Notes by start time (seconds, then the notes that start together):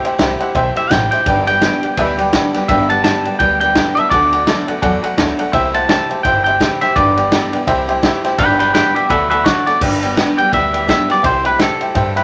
0.03 A3 E4 G4 C5 E5 G5, muted upright bass stroke, ride
0.18 C2 C3 E3 A3 E4 G4 C5 E5 G5, snare, ride
0.39 A3 E4 G4 C5 E5 F#5, muted upright bass stroke, ride
0.55 B1 E3 A3 E4 G4 C5 E5 G5, kick, ride
0.75 A3 E4 G4 C5 E5 G5, muted upright bass stroke, ride
0.90 A1 C3 E3 A3 E4 G4 C5 E5 F#5 G5, kick, snare, ride
1.11 A3 E4 G4 C5 E5 G5, muted upright bass stroke, snare, ride
1.26 G1 G2 D3 E3 G3 B3 G4 B4 D5 G5, kick, ride
1.46 E3 G3 B3 G4 B4 D5 G5, ride
1.61 G2 D3 E3 G3 B3 G4 B4 D5 G5, snare, ride
1.83 E3 G3 B3 G4 B4 D5 G5, muted upright bass stroke, ride
1.97 D2 E3 G3 B3 G4 B4 D5 E5, kick, ride
2.17 E3 G3 B3 G4 B4 D5 G5, ride
2.32 G2 D3 E3 G3 B3 G4 B4 D5 G5, kick, snare, ride
2.53 E3 G3 B3 G4 B4 D5 G5, muted upright bass stroke, snare, ride
2.68 G1 G2 D3 E3 G3 B3 G4 B4 D5 E5 G5, kick, ride
2.88 E3 G3 B3 G4 B4 D5 F#5 A5, ride
3.04 G2 D3 E3 G3 B3 G4 B4 D5 A5, snare, ride
3.25 E3 G3 B3 G4 B4 D5 G5, muted upright bass stroke, ride
3.39 D2 E3 G3 B3 B4 D5 G5, kick, ride
3.43 G4
3.60 E3 G3 B3 G4 B4 D5 G5, ride
3.75 G2 D3 E3 G3 B3 G4 B4 D5 G5, kick, snare, ride
3.95 G3 B3 G4 B4 D5 E5 A5, muted upright bass stroke, ride
4.00 E3
4.10 D2 D3 F#3 A3 B3 F#4 A4 D5 F#5, kick, ride
4.32 A3 B3 F#4 A4 D5 F#5, ride
4.47 D3 F#3 A3 B3 F#4 A4 D5 A5, snare, ride
4.68 A3 B3 F#4 A4 D5 F#5, muted upright bass stroke, ride
4.82 E2 F#3 A3 B3 F#4 A4 D5 F#5, kick, ride
5.03 A3 B3 F#4 A4 D5 F#5, muted upright bass stroke, ride
5.18 D2 D3 F#3 A3 B3 F#4 A4 D5 A5, kick, snare, ride
5.38 B3 F#4 A4 D5 F#5, muted upright bass stroke, ride
5.43 A3
5.53 C2 C3 E3 A3 E4 G4 C5 E5 G5, kick, ride
5.74 A3 E4 G4 C5 E5 F#5 A5, ride
5.89 C3 E3 A3 E4 G4 C5 E5 G5 A5, snare, ride
6.10 A3 E4 G4 C5 E5 G5, muted upright bass stroke, ride
6.23 G1 E3 A3 E4 C5 E5 G5, kick, ride
6.27 G4
6.44 E4 G4 C5 E5 G5, ride
6.49 A3
6.60 C3 E3 A3 E4 G4 C5 E5 G5, kick, snare, ride
6.81 A3 E4 G4 C5 E5 G5, muted upright bass stroke, snare, ride
6.96 G1 G2 D3 E3 G3 B3 G4 B4 D5 G5, kick, ride
7.16 E3 G3 B3 G4 B4 D5 G5, ride
7.31 G2 D3 E3 G3 B3 G4 B4 D5 G5, snare, ride
7.53 E3 G3 B3 G4 B4 D5 G5, muted upright bass stroke, ride
7.67 C2 E3 A3 E4 G4 C5 E5 G5, kick, ride
7.88 A3 E4 G4 C5 E5 G5, ride
8.02 C3 E3 A3 E4 G4 C5 E5 G5, kick, snare, ride
8.24 A3 E4 G4 C5 E5 G5, muted upright bass stroke, snare, ride
8.38 G1 G2 D3 E3 G3 B3 G4 B4 D5 G5, kick, ride
8.59 E3 G3 B3 G4 B4 D5 G5, ride
8.74 G2 D3 E3 G3 B3 G4 B4 D5 G5, snare, ride
8.95 E3 G3 B3 G4 B4 D5 E5 G5, muted upright bass stroke, ride
9.09 D2 F#3 A3 B3 F#4 A4 B4 D5 E5 F#5, kick, ride
9.30 A3 B3 F#4 A4 B4 D5 E5 F#5, ride
9.44 D3 F#3 A3 B3 F#4 A4 D5 F#5, kick, snare, ride
9.66 A3 B3 F#4 A4 D5 F#5, muted upright bass stroke, snare, ride
9.81 G1 G2 D3 E3 G3 B3 G4 B4 D5 G5, kick, crash
10.02 E3 G3 B3 G4 B4 D5 G5, ride
10.15 G2 D3 E3 G3 B3 G4 B4 D5 G5, snare, ride
10.37 G3 B3 G4 B4 D5 G5, muted upright bass stroke, ride
10.41 E3
10.52 D2 E3 G3 B3 B4 D5 E5 G5, kick, ride
10.56 G4
10.72 G3 B3 G4 B4 D5 G5, ride
10.77 E3
10.87 G2 D3 E3 G3 B3 G4 B4 D5 E5 G5, kick, snare, ride
11.08 B3 G4 B4 D5 G5, muted upright bass stroke, snare, ride
11.12 E3 G3
11.23 C2 C3 E3 A3 E4 G4 C5 E5 G5, kick, ride
11.44 E4 G4 B4 C5 E5 G5, ride
11.49 A3
11.58 C3 E3 A3 E4 G4 A4 C5 E5 G5, snare, ride
11.80 A3 E4 G4 C5 E5 G5, muted upright bass stroke, ride
11.94 G2 E3 A3 E4 G4 C5 E5 G5, kick, ride
12.15 A3 E4 G4 B4 C5 E5 G5, ride